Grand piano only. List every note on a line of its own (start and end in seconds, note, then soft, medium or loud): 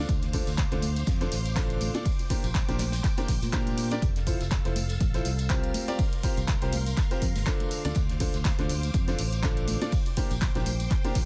0.33 0.48 D3 medium
0.33 0.48 D4 medium
0.33 0.48 F4 medium
0.33 0.48 A4 medium
0.33 0.48 C5 medium
0.72 0.83 D3 medium
0.72 0.83 D4 medium
0.72 0.83 F4 medium
0.72 0.83 A4 medium
0.72 0.83 C5 medium
1.21 1.32 D3 medium
1.21 1.32 D4 medium
1.21 1.32 F4 medium
1.21 1.32 A4 medium
1.21 1.32 C5 medium
1.56 1.91 D3 medium
1.56 1.91 D4 medium
1.56 1.91 F4 medium
1.56 1.91 A4 medium
1.56 1.91 C5 loud
1.95 2.04 A#2 medium
1.95 2.04 D4 medium
1.95 2.04 F4 medium
1.95 2.04 A4 medium
1.95 2.04 D5 medium
2.30 2.44 A#2 medium
2.30 2.44 D4 medium
2.30 2.44 G4 medium
2.30 2.44 A#4 medium
2.30 2.44 C5 medium
2.68 2.80 A#2 medium
2.68 2.80 D4 medium
2.68 2.80 G4 medium
2.68 2.80 A#4 medium
2.68 2.80 C5 medium
3.18 3.29 A#2 medium
3.18 3.29 D4 medium
3.18 3.29 G4 medium
3.18 3.29 A#4 medium
3.18 3.29 C5 medium
3.53 3.88 A#2 medium
3.53 3.88 D4 medium
3.53 3.88 G4 medium
3.53 3.88 A#4 medium
3.53 3.88 C5 loud
3.91 4.01 D4 medium
3.91 4.01 G4 medium
3.91 4.01 A#4 medium
3.91 4.01 D5 medium
4.27 4.41 F3 medium
4.27 4.41 E4 medium
4.27 4.41 F4 medium
4.27 4.41 A4 medium
4.27 4.41 C5 medium
4.65 4.76 F3 medium
4.65 4.76 E4 medium
4.65 4.76 F4 medium
4.65 4.76 A4 medium
4.65 4.76 C5 medium
5.14 5.26 F3 medium
5.14 5.26 E4 medium
5.14 5.26 F4 medium
5.14 5.26 A4 medium
5.14 5.26 C5 medium
5.50 5.85 C4 medium
5.50 5.85 F4 medium
5.50 5.85 G4 medium
5.50 5.85 A#4 medium
5.50 5.85 C5 loud
5.88 5.99 C4 medium
5.88 5.99 F4 medium
5.88 5.99 G4 medium
5.88 5.99 A#4 medium
5.88 5.99 D5 medium
6.23 6.38 C4 medium
6.23 6.38 F4 medium
6.23 6.38 G4 medium
6.23 6.38 A#4 medium
6.23 6.38 C5 medium
6.62 6.73 C4 medium
6.62 6.73 F4 medium
6.62 6.73 G4 medium
6.62 6.73 A#4 medium
6.62 6.73 C5 medium
7.11 7.22 C4 medium
7.11 7.22 F4 medium
7.11 7.22 G4 medium
7.11 7.22 A#4 medium
7.11 7.22 C5 medium
7.46 7.82 D3 medium
7.46 7.82 D4 medium
7.46 7.82 F4 medium
7.46 7.82 A4 medium
7.46 7.82 C5 loud
7.85 7.96 D3 medium
7.85 7.96 D4 medium
7.85 7.96 F4 medium
7.85 7.96 A4 medium
7.85 7.96 D5 loud
8.20 8.34 D3 medium
8.20 8.34 D4 medium
8.20 8.34 F4 medium
8.20 8.34 A4 medium
8.20 8.34 C5 medium
8.59 8.70 D3 medium
8.59 8.70 D4 medium
8.59 8.70 F4 medium
8.59 8.70 A4 medium
8.59 8.70 C5 medium
9.08 9.19 D3 medium
9.08 9.19 D4 medium
9.08 9.19 F4 medium
9.08 9.19 A4 medium
9.08 9.19 C5 medium
9.43 9.78 D3 medium
9.43 9.78 D4 medium
9.43 9.78 F4 medium
9.43 9.78 A4 medium
9.43 9.78 C5 loud
9.82 9.91 A#2 medium
9.82 9.91 D4 medium
9.82 9.91 F4 medium
9.82 9.91 A4 medium
9.82 9.91 D5 medium
10.17 10.31 A#2 medium
10.17 10.31 D4 medium
10.17 10.31 G4 medium
10.17 10.31 A#4 medium
10.17 10.31 C5 medium
10.55 10.67 A#2 medium
10.55 10.67 D4 medium
10.55 10.67 G4 medium
10.55 10.67 A#4 medium
10.55 10.67 C5 medium
11.04 11.16 A#2 medium
11.04 11.16 D4 medium
11.04 11.16 G4 medium
11.04 11.16 A#4 medium
11.04 11.16 C5 medium